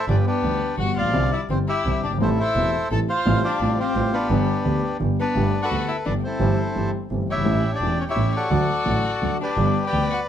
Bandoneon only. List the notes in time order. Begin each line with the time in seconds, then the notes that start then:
0.10 G4 B4 D5
0.27 D4 G4 B4
0.80 F#5
0.98 D5 F5
1.33 E5
1.51 C5
1.69 G4 E5
2.04 D5
2.22 E4 A4 C5
2.40 A4 C5 E5
2.92 A5
3.10 C5 F5
3.44 F4 G4 D5
3.80 F4 G4 C5
4.14 D4 G4 B4
5.20 D4 B4
5.63 A4 B4 F#5
5.89 E5
6.07 D5
6.24 E4 A4 C5
7.30 G4 C#5 E5
7.74 G4 D5
8.01 C#5
8.10 G4 C#5 E5
8.36 A4 D5 F#5
9.42 G4 B4 D5
9.87 B4 D5 G5
10.13 F#5